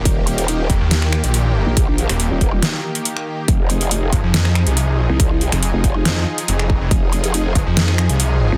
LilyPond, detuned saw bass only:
\new Staff \with { instrumentName = "Detuned saw bass" } { \clef bass \time 4/4 \key f \minor \tempo 4 = 140 r4. f,,16 ees,4 bes,,4 r16 | r8. ees,,8 r2 r8. | r4. g,,16 f,4 c,4 r16 | r8. f,,8 r8. f,8 r8 f,,8. f,,16 |
r4. g,,16 f,4 c,4 r16 | }